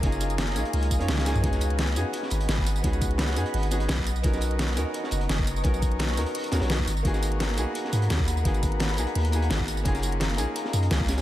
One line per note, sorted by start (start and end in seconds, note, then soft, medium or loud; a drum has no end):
0.00 0.57 F#1 loud
0.00 0.55 A#3 loud
0.00 0.02 C#4 medium
0.00 0.53 C#4 medium
0.00 0.03 D#4 medium
0.00 0.54 D#4 medium
0.00 0.04 F4 medium
0.00 0.05 G#4 loud
0.00 1.41 D#5 medium
0.00 1.41 F5 medium
0.00 1.41 G#5 medium
0.00 1.40 A#5 medium
0.00 kick loud
0.00 closed hi-hat medium
0.04 0.54 F4 medium
0.04 0.55 G#4 loud
0.12 closed hi-hat soft
0.12 tambourine soft
0.20 closed hi-hat medium
0.20 tambourine medium
0.30 closed hi-hat soft
0.30 tambourine soft
0.38 snare loud
0.38 closed hi-hat loud
0.47 snare medium
0.47 closed hi-hat soft
0.55 0.64 A#1 medium
0.55 0.88 A#3 medium
0.55 0.89 C#4 medium
0.55 0.89 D#4 medium
0.55 0.89 F4 medium
0.55 0.89 G#4 medium
0.55 closed hi-hat medium
0.55 tambourine medium
0.65 closed hi-hat soft
0.73 1.01 C#2 loud
0.73 closed hi-hat loud
0.73 open hi-hat medium
0.83 closed hi-hat soft
0.91 kick medium
0.91 closed hi-hat medium
0.91 tambourine medium
0.99 1.08 F#2 medium
0.99 1.23 A#3 medium
0.99 1.24 C#4 medium
0.99 1.24 D#4 medium
0.99 1.24 F4 medium
0.99 1.25 C#5 loud
0.99 closed hi-hat soft
1.08 1.34 C#2 loud
1.08 snare loud
1.08 closed hi-hat medium
1.08 high tom medium
1.18 snare medium
1.18 snare loud
1.18 closed hi-hat medium
1.25 1.41 A#3 medium
1.25 1.41 C#4 medium
1.25 1.42 D#4 medium
1.25 1.42 F4 medium
1.25 1.42 G#4 loud
1.25 snare loud
1.25 closed hi-hat medium
1.25 tambourine medium
1.35 1.43 A#1 loud
1.35 mid tom medium
1.35 tambourine soft
1.41 1.98 C#2 loud
1.41 1.93 B3 loud
1.41 1.94 C#4 medium
1.41 1.94 D#4 medium
1.41 1.95 F#4 medium
1.41 6.84 D#5 medium
1.41 4.04 F#5 medium
1.41 4.04 B5 medium
1.41 kick loud
1.41 closed hi-hat medium
1.41 closed hi-hat loud
1.46 1.95 G#4 loud
1.52 snare soft
1.52 closed hi-hat soft
1.52 tambourine soft
1.61 closed hi-hat medium
1.61 tambourine medium
1.70 closed hi-hat soft
1.79 snare loud
1.79 closed hi-hat loud
1.79 closed hi-hat medium
1.88 closed hi-hat soft
1.95 2.05 F#2 medium
1.95 2.05 B3 medium
1.95 2.05 C#4 medium
1.95 2.06 D#4 medium
1.95 2.06 F#4 medium
1.95 2.06 G#4 loud
1.95 closed hi-hat medium
1.95 tambourine medium
2.13 closed hi-hat medium
2.13 closed hi-hat loud
2.23 snare soft
2.30 2.47 G#1 loud
2.30 closed hi-hat medium
2.30 tambourine medium
2.40 closed hi-hat soft
2.49 2.83 G#1 loud
2.49 snare loud
2.49 closed hi-hat medium
2.49 closed hi-hat loud
2.58 kick loud
2.66 closed hi-hat medium
2.66 tambourine medium
2.76 tambourine soft
2.82 3.38 C#2 loud
2.82 3.33 B3 medium
2.82 3.34 C#4 medium
2.82 3.34 D#4 medium
2.82 3.35 F#4 medium
2.82 kick loud
2.82 closed hi-hat medium
2.82 closed hi-hat loud
2.86 3.36 G#4 loud
2.93 closed hi-hat soft
2.93 tambourine soft
3.01 kick loud
3.01 closed hi-hat medium
3.01 tambourine medium
3.11 closed hi-hat soft
3.18 snare loud
3.18 closed hi-hat loud
3.18 closed hi-hat medium
3.28 snare medium
3.28 closed hi-hat soft
3.35 3.45 F#2 medium
3.35 3.69 B3 medium
3.35 3.69 C#4 medium
3.35 3.70 D#4 medium
3.35 3.70 F#4 medium
3.35 3.70 G#4 medium
3.35 closed hi-hat medium
3.35 tambourine medium
3.46 closed hi-hat soft
3.54 3.88 G#1 loud
3.54 closed hi-hat loud
3.54 open hi-hat medium
3.63 closed hi-hat soft
3.71 4.05 B3 medium
3.71 4.05 C#4 medium
3.71 4.06 D#4 medium
3.71 4.06 F#4 medium
3.71 4.06 G#4 loud
3.71 closed hi-hat medium
3.71 tambourine medium
3.80 closed hi-hat soft
3.89 4.23 B1 medium
3.89 snare loud
3.89 closed hi-hat medium
3.89 closed hi-hat loud
3.98 kick medium
4.06 11.22 A#5 medium
4.06 6.85 C#6 medium
4.06 closed hi-hat medium
4.06 tambourine medium
4.16 tambourine soft
4.22 4.78 B1 loud
4.22 4.74 B3 loud
4.22 4.74 C#4 medium
4.22 4.75 D#4 medium
4.22 4.75 F#4 medium
4.22 kick loud
4.22 closed hi-hat medium
4.22 closed hi-hat loud
4.27 4.76 A#4 loud
4.33 snare soft
4.33 closed hi-hat soft
4.33 tambourine soft
4.41 closed hi-hat medium
4.41 tambourine medium
4.51 closed hi-hat soft
4.59 snare loud
4.59 closed hi-hat loud
4.59 closed hi-hat medium
4.68 closed hi-hat soft
4.76 4.85 D#2 medium
4.76 4.86 B3 medium
4.76 4.86 C#4 medium
4.76 4.86 D#4 medium
4.76 4.87 F#4 medium
4.76 4.87 A#4 loud
4.76 closed hi-hat medium
4.76 tambourine medium
4.94 closed hi-hat medium
4.94 closed hi-hat loud
5.04 snare soft
5.11 5.28 F#1 loud
5.11 closed hi-hat medium
5.11 tambourine medium
5.21 closed hi-hat soft
5.29 5.63 F#1 loud
5.29 snare loud
5.29 closed hi-hat medium
5.39 kick loud
5.47 closed hi-hat medium
5.47 tambourine medium
5.56 tambourine soft
5.62 6.19 B1 loud
5.62 6.14 B3 medium
5.62 6.15 C#4 medium
5.62 6.15 D#4 medium
5.62 6.16 F#4 medium
5.62 kick loud
5.62 closed hi-hat medium
5.67 6.16 A#4 loud
5.74 closed hi-hat soft
5.74 tambourine soft
5.82 kick loud
5.82 closed hi-hat medium
5.82 tambourine medium
5.92 closed hi-hat soft
5.99 snare loud
5.99 closed hi-hat loud
5.99 closed hi-hat medium
6.08 snare medium
6.08 closed hi-hat soft
6.16 6.26 D#2 medium
6.16 6.50 B3 medium
6.16 6.50 C#4 medium
6.16 6.50 D#4 medium
6.16 6.51 F#4 medium
6.16 6.51 A#4 medium
6.16 closed hi-hat medium
6.16 tambourine medium
6.26 closed hi-hat soft
6.35 closed hi-hat medium
6.35 open hi-hat medium
6.44 closed hi-hat soft
6.51 6.61 D#2 medium
6.51 6.86 B3 medium
6.51 6.86 C#4 medium
6.51 6.86 D#4 medium
6.51 6.87 F#4 medium
6.51 6.87 A#4 loud
6.51 snare loud
6.51 closed hi-hat medium
6.51 tambourine medium
6.61 6.86 B1 medium
6.61 snare loud
6.61 closed hi-hat medium
6.70 snare loud
6.70 closed hi-hat medium
6.79 kick medium
6.88 7.03 G#1 loud
6.88 9.83 F#5 medium
6.88 9.83 B5 medium
6.88 closed hi-hat medium
6.88 tambourine medium
6.97 tambourine soft
7.03 7.59 G#1 loud
7.03 7.55 A#3 loud
7.03 7.55 B3 medium
7.03 7.56 D#4 medium
7.03 7.56 F#4 medium
7.03 kick loud
7.03 closed hi-hat medium
7.07 7.57 G#4 loud
7.13 snare soft
7.13 closed hi-hat soft
7.13 tambourine soft
7.23 closed hi-hat medium
7.23 tambourine medium
7.32 closed hi-hat soft
7.40 snare loud
7.40 closed hi-hat medium
7.49 closed hi-hat soft
7.56 7.66 B1 medium
7.56 7.67 A#3 medium
7.56 7.67 B3 medium
7.56 7.67 D#4 medium
7.56 7.67 F#4 medium
7.56 7.68 G#4 loud
7.56 closed hi-hat medium
7.56 tambourine medium
7.75 closed hi-hat medium
7.85 snare soft
7.93 8.09 G#2 loud
7.93 closed hi-hat medium
7.93 tambourine medium
8.02 closed hi-hat soft
8.10 8.44 D#2 loud
8.10 snare loud
8.10 closed hi-hat loud
8.10 closed hi-hat medium
8.19 kick loud
8.28 closed hi-hat medium
8.28 tambourine medium
8.37 tambourine soft
8.43 9.00 G#1 loud
8.43 8.95 A#3 medium
8.43 8.95 B3 medium
8.43 8.96 D#4 medium
8.43 8.96 F#4 medium
8.43 kick loud
8.43 closed hi-hat medium
8.47 8.97 G#4 medium
8.54 closed hi-hat soft
8.54 tambourine soft
8.63 kick loud
8.63 closed hi-hat medium
8.63 tambourine medium
8.72 closed hi-hat soft
8.80 snare loud
8.80 closed hi-hat medium
8.89 snare medium
8.89 closed hi-hat soft
8.97 9.06 B1 medium
8.97 9.29 A#3 medium
8.97 9.30 B3 medium
8.97 9.31 D#4 medium
8.97 9.31 F#4 medium
8.97 9.32 G#4 medium
8.97 closed hi-hat medium
8.97 tambourine medium
9.07 closed hi-hat soft
9.15 9.49 D#2 loud
9.15 closed hi-hat medium
9.15 open hi-hat medium
9.25 closed hi-hat soft
9.31 9.82 A#3 medium
9.31 9.83 B3 medium
9.31 9.84 D#4 medium
9.31 9.84 F#4 medium
9.31 closed hi-hat medium
9.31 tambourine medium
9.35 9.85 G#4 loud
9.42 closed hi-hat medium
9.50 9.84 G#1 medium
9.50 snare loud
9.50 closed hi-hat loud
9.50 closed hi-hat medium
9.60 kick medium
9.68 closed hi-hat medium
9.68 tambourine medium
9.77 tambourine soft
9.83 10.40 F#1 loud
9.83 10.35 A#3 loud
9.83 10.36 C#4 medium
9.83 10.36 D#4 medium
9.83 10.37 F4 medium
9.83 11.22 D#5 medium
9.83 11.22 F5 medium
9.83 11.22 G#5 medium
9.83 kick loud
9.83 closed hi-hat medium
9.88 10.37 G#4 loud
9.94 snare soft
9.94 closed hi-hat soft
9.94 tambourine soft
10.02 closed hi-hat medium
10.02 tambourine medium
10.12 closed hi-hat soft
10.20 snare loud
10.20 closed hi-hat medium
10.30 closed hi-hat soft
10.37 10.47 A#1 medium
10.37 10.47 A#3 medium
10.37 10.47 C#4 medium
10.37 10.48 D#4 medium
10.37 10.48 F4 medium
10.37 10.48 G#4 loud
10.37 closed hi-hat medium
10.37 tambourine medium
10.56 closed hi-hat loud
10.56 closed hi-hat medium
10.65 snare soft
10.73 10.89 F#2 loud
10.73 closed hi-hat medium
10.73 tambourine medium
10.83 closed hi-hat soft
10.91 11.22 C#2 loud
10.91 snare loud
10.91 closed hi-hat medium
11.00 kick loud
11.08 snare loud
11.08 closed hi-hat medium
11.08 tambourine medium
11.18 snare loud
11.18 closed hi-hat medium
11.18 tambourine soft